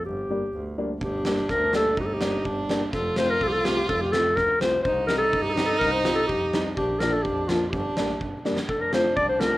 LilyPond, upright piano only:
\new Staff \with { instrumentName = "Upright piano" } { \time 2/4 \key g \minor \tempo 4 = 125 r8 <g bes d'>16 r8. <g bes d'>16 r16 | r8 <g bes d'>16 r8. <g bes d'>16 r16 | r8 <g bes d'>16 r8. <g bes d'>16 r16 | r8 <a c' f'>16 r8. <a c' f'>16 r16 |
r8 <a c' f'>16 r8. <a c' f'>16 r16 | r8 <g c' ees'>16 r8. <g c' ees'>16 r16 | r8 <g c' f'>16 r8. <g c' ees'>16 r16 | r8 <f bes d'>16 r8. <f bes f'>16 r16 |
r8 <g bes d'>16 r8. <g bes d'>16 r16 | r8 <a c' f'>16 r8. <a c' f'>16 r16 | }